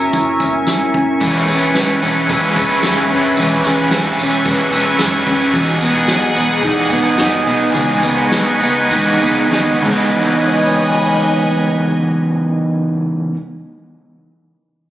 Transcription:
Already playing: clean electric guitar F#3 C#4 E4 A#4, analog synth pad A#4 E5 G#5 C#6
0.13 fingered electric bass F#1, clean electric guitar E4, kick, tambourine
0.40 fingered electric bass F#1, clean electric guitar C#4, kick, tambourine
0.54 floor tom
0.67 fingered electric bass G#1, clean electric guitar E4, snare, tambourine
0.94 fingered electric bass F#1, clean electric guitar C#4, kick, floor tom
1.20 fingered electric bass E1, overdriven electric guitar E3 G#3 C#4 G#4 B4, analog synth pad B4, kick, floor tom, tambourine
1.47 fingered electric bass E1, overdriven electric guitar G#4 B4, tambourine
1.52 overdriven electric guitar C#4
1.62 floor tom
1.73 overdriven electric guitar G#3 C#4 G#4, snare, tambourine
1.78 overdriven electric guitar B4
2.00 fingered electric bass E1, overdriven electric guitar G#4 B4, tambourine
2.05 overdriven electric guitar C#4
2.28 fingered electric bass E1, overdriven electric guitar E3 G#3 C#4 G#4 B4, kick, floor tom, tambourine
2.54 fingered electric bass E1, overdriven electric guitar G#4 B4, kick, tambourine
2.59 overdriven electric guitar C#4
2.70 floor tom
2.82 fingered electric bass F#1, overdriven electric guitar G#3 C#4 G#4, snare, tambourine
2.87 overdriven electric guitar B4
3.09 fingered electric bass F#1, overdriven electric guitar G#4 B4, floor tom
3.14 overdriven electric guitar C#4
3.36 fingered electric bass E1, overdriven electric guitar E3 G#3 C#4 G#4 B4, floor tom, tambourine
3.64 fingered electric bass E1, overdriven electric guitar G#4 B4, tambourine
3.69 overdriven electric guitar C#4
3.78 floor tom
3.91 overdriven electric guitar G#3 C#4 G#4, snare, tambourine
3.95 overdriven electric guitar B4
4.17 fingered electric bass E1, overdriven electric guitar G#4 B4, tambourine
4.22 overdriven electric guitar C#4
4.44 fingered electric bass E1, overdriven electric guitar E3 G#3 C#4 G#4 B4, kick, floor tom, tambourine
4.72 fingered electric bass E1, overdriven electric guitar G#4 B4, tambourine
4.76 overdriven electric guitar C#4
4.86 floor tom
4.99 fingered electric bass F#1, overdriven electric guitar G#3 C#4 G#4, snare, tambourine
5.03 overdriven electric guitar B4
5.26 fingered electric bass F#1, clean electric guitar C#4, overdriven electric guitar G#4 B4, kick, floor tom
5.31 overdriven electric guitar C#4
5.53 fingered electric bass E1, overdriven electric guitar E3 F#3 B3 D#4 G#4, analog synth pad G#4 F#5 G#5 D#6, kick, floor tom, tambourine
5.79 fingered electric bass E1, overdriven electric guitar D#4 G#4, tambourine
5.84 overdriven electric guitar B3
5.95 floor tom
6.07 overdriven electric guitar F#3 B3 D#4, snare, tambourine
6.12 overdriven electric guitar G#4
6.34 fingered electric bass E1, clean electric guitar B3, overdriven electric guitar D#4 G#4, tambourine
6.39 overdriven electric guitar B3
6.61 fingered electric bass E1, overdriven electric guitar E3 F#3 B3 D#4 G#4, kick, floor tom, tambourine
6.89 fingered electric bass E1, overdriven electric guitar D#4 G#4, kick, tambourine
6.94 overdriven electric guitar B3
7.04 floor tom
7.17 fingered electric bass F#1, overdriven electric guitar F#3 B3 D#4, snare, tambourine
7.22 overdriven electric guitar G#4
7.45 fingered electric bass B1, overdriven electric guitar D#4 G#4, floor tom
7.50 overdriven electric guitar B3
7.74 fingered electric bass C#2, overdriven electric guitar C#3 E3 G#3 B3 D#4 G#4, analog synth pad B4 D#5 C#6, floor tom, tambourine
8.01 fingered electric bass C#2, overdriven electric guitar B3 D#4 G#4, tambourine
8.06 overdriven electric guitar G#3
8.17 floor tom
8.31 overdriven electric guitar G#3 B3 D#4, snare, tambourine
8.35 overdriven electric guitar G#4
8.60 fingered electric bass C#2, overdriven electric guitar B3 D#4 G#4, tambourine
8.65 overdriven electric guitar G#3
8.90 fingered electric bass C#2, overdriven electric guitar C#3 E3 G#3 B3 D#4 G#4, kick, floor tom, tambourine
9.20 fingered electric bass C#2, overdriven electric guitar B3 D#4 G#4, kick, tambourine
9.25 overdriven electric guitar G#3
9.36 floor tom
9.50 fingered electric bass D#2, overdriven electric guitar G#3 B3 D#4, snare, tambourine
9.55 overdriven electric guitar G#4
9.81 fingered electric bass C#2, overdriven electric guitar C#3 E3 G#3 B3, analog synth pad B4 C#5 D#5 G#5, kick, crash
9.85 overdriven electric guitar D#4 G#4

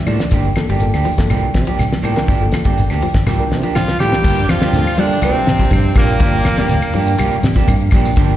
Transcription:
0.06 fingered electric bass A2, clean electric guitar F3 G3 A#3 D4, reed electric piano D5, closed hi-hat, claves, shekere
0.19 snare, closed hi-hat
0.31 fingered electric bass G1, clean electric guitar D3 F3 A#3 D4 G4, kick, closed hi-hat, shekere
0.56 reed electric piano A#3 F4 A4, snare, closed hi-hat, claves, shekere
0.69 fingered electric bass G1, clean electric guitar G3 A#3 D4 G4
0.80 reed electric piano A#3 F4 A4, closed hi-hat, shekere
0.94 fingered electric bass D2, clean electric guitar A#3 D4 G4, snare, claves
1.05 clean electric guitar F3, open hi-hat, shekere
1.18 fingered electric bass G1, reed electric piano A#3 F4 A4, kick, snare
1.30 fingered electric bass C2, clean electric guitar F3 G3 A#3 D4 G4, closed hi-hat, claves, shekere
1.54 fingered electric bass C3, kick, snare, closed hi-hat, shekere
1.67 clean electric guitar F3 A#3 D4 G4, closed hi-hat
1.79 fingered electric bass C2, snare, closed hi-hat, claves, shekere
1.93 snare
2.02 fingered electric bass A2, clean electric guitar F3 G3 A#3 D4 G4, reed electric piano F4 A#4, closed hi-hat, claves, shekere
2.16 reed electric piano D4 F4 A#4, snare, closed hi-hat
2.27 fingered electric bass G1, clean electric guitar F3 A#3 D4 G4, muted clean electric guitar stroke, kick, closed hi-hat, shekere
2.41 reed electric piano A#3 F4 A4
2.51 snare, closed hi-hat, claves, shekere
2.65 fingered electric bass G1, clean electric guitar G3 A#3 D4 G4, kick, closed hi-hat
2.78 closed hi-hat, shekere
2.90 fingered electric bass D2, clean electric guitar A#3 D4 G4, snare, claves
3.02 clean electric guitar F3, open hi-hat, shekere
3.14 fingered electric bass G1, kick, snare
3.27 fingered electric bass C2, clean electric guitar F3 G3 A#3 D4 G4, reed electric piano F4 A#4, snare, claves, shekere
3.40 reed electric piano D4 F4 A#4
3.51 fingered electric bass C3, snare, shekere
3.63 clean electric guitar F3 A#3 D4 G4
3.75 fingered electric bass C2, bass trombone F3, alto saxophone F4, tenor saxophone F4, snare, claves, shekere
3.88 snare
3.99 fingered electric bass A2, clean electric guitar F3 G3 A#3 D4 G4, bass trombone G3, tenor saxophone G4, alto saxophone G4, snare, claves, shekere
4.13 snare
4.24 fingered electric bass G2, clean electric guitar D3 F3 A#3 D4, muted clean electric guitar stroke, kick, crash, shekere
4.48 fingered electric bass F2, bass trombone F3, tenor saxophone F4, alto saxophone F4, snare, closed hi-hat, claves
4.61 clean electric guitar G3 A#3 D4 G4, snare, shekere
4.73 fingered electric bass D2, snare, closed hi-hat, shekere
4.87 muted fingered electric bass stroke, claves
4.97 bass trombone D3, clean electric guitar F3 A#3 D4 G4, fingered electric bass G3, tenor saxophone D4, alto saxophone D4, closed hi-hat, shekere
5.10 closed hi-hat, shekere
5.21 fingered electric bass C2, bass trombone C3, clean electric guitar F3 G3 A#3 D4 G4, tenor saxophone C4, closed hi-hat, claves, shekere
5.25 alto saxophone C4
5.46 fingered electric bass C3, snare, closed hi-hat, shekere
5.59 clean electric guitar F3 A#3 D4 G4, kick, snare, closed hi-hat, shekere
5.70 fingered electric bass G2, kick, closed hi-hat, claves, shekere
5.83 closed hi-hat
5.94 fingered electric bass A#1, bass trombone A#2, clean electric guitar F3 G3 A#3 D4 G4, alto saxophone A#3, kick, closed hi-hat, claves, shekere
5.99 tenor saxophone A#3
6.08 closed hi-hat, shekere
6.20 fingered electric bass G1, clean electric guitar D3 F3 A#3 D4 G4, kick, snare, closed hi-hat, shekere
6.44 fingered electric bass F1, snare, closed hi-hat, claves
6.57 clean electric guitar G3 A#3 D4 G4, snare, closed hi-hat, shekere
6.69 fingered electric bass D2, snare, closed hi-hat, shekere
6.81 muted fingered electric bass stroke, closed hi-hat, claves
6.94 fingered electric bass G2, clean electric guitar F3 A#3 D4 G4, closed hi-hat, shekere
7.06 shekere
7.18 fingered electric bass C2, clean electric guitar F3 G3 A#3 D4 G4, closed hi-hat, claves, shekere
7.32 closed hi-hat
7.43 fingered electric bass C3, snare, closed hi-hat, shekere
7.56 clean electric guitar F3 A#3 D4 G4, kick, snare, shekere
7.67 fingered electric bass G2, kick, closed hi-hat, claves, shekere
7.81 closed hi-hat
7.91 fingered electric bass A#1, clean electric guitar F3 G3 A#3 D4 G4, kick, snare, closed hi-hat, claves, shekere
8.05 shekere
8.16 fingered electric bass G1, clean electric guitar D3 F3 A#3 D4 G4, kick, closed hi-hat, shekere

